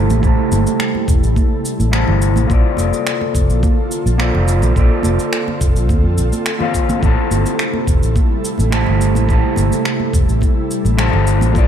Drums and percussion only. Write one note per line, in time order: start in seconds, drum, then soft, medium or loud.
0.10 high conga medium
0.10 low conga medium
0.10 shaker soft
0.23 kick loud
0.23 shaker soft
0.52 high conga medium
0.52 shaker medium
0.67 shaker soft
0.80 finger snap loud
0.80 shaker soft
0.95 high conga medium
1.08 kick loud
1.08 shaker medium
1.24 shaker soft
1.36 kick loud
1.36 high conga medium
1.36 shaker soft
1.65 shaker medium
1.80 high conga medium
1.80 shaker soft
1.93 finger snap loud
1.93 shaker soft
2.08 low conga medium
2.22 shaker medium
2.36 high conga medium
2.36 low conga medium
2.36 shaker soft
2.50 kick loud
2.50 shaker soft
2.77 high conga medium
2.77 shaker medium
2.93 shaker soft
3.07 finger snap loud
3.07 shaker soft
3.21 high conga medium
3.35 kick loud
3.35 shaker medium
3.50 shaker soft
3.63 kick loud
3.63 high conga medium
3.63 shaker soft
3.92 shaker medium
4.06 high conga medium
4.06 shaker soft
4.20 finger snap loud
4.20 shaker soft
4.35 low conga medium
4.48 shaker medium
4.62 high conga medium
4.62 low conga medium
4.62 shaker soft
4.76 kick loud
4.76 shaker soft
5.03 high conga medium
5.03 shaker medium
5.19 shaker soft
5.33 finger snap medium
5.33 shaker soft
5.48 high conga medium
5.61 kick loud
5.61 shaker medium
5.76 shaker soft
5.89 kick loud
5.89 high conga medium
5.89 shaker soft
6.18 shaker medium
6.33 high conga medium
6.33 shaker soft
6.46 finger snap loud
6.46 shaker soft
6.60 low conga medium
6.74 kick medium
6.74 shaker medium
6.89 high conga medium
6.89 low conga medium
6.89 shaker soft
7.03 kick loud
7.03 shaker soft
7.31 high conga medium
7.31 shaker medium
7.46 shaker soft
7.59 finger snap medium
7.59 shaker soft
7.74 high conga medium
7.87 kick loud
7.87 shaker medium
8.03 shaker soft
8.16 kick loud
8.16 high conga medium
8.16 shaker soft
8.45 shaker medium
8.58 high conga medium
8.58 shaker soft
8.72 finger snap medium
8.72 shaker soft
8.87 low conga medium
9.01 shaker medium
9.15 high conga medium
9.15 low conga medium
9.15 shaker soft
9.29 kick loud
9.29 shaker soft
9.56 high conga medium
9.56 shaker medium
9.72 shaker soft
9.85 finger snap medium
9.85 shaker soft
10.00 high conga medium
10.13 kick medium
10.13 shaker medium
10.29 shaker soft
10.41 kick loud
10.41 high conga medium
10.41 shaker soft
10.71 shaker medium
10.85 high conga medium
10.85 shaker soft
10.99 finger snap medium
10.99 shaker soft
11.13 low conga medium
11.27 shaker medium
11.41 high conga medium
11.41 low conga medium
11.41 shaker soft
11.55 kick loud
11.55 shaker soft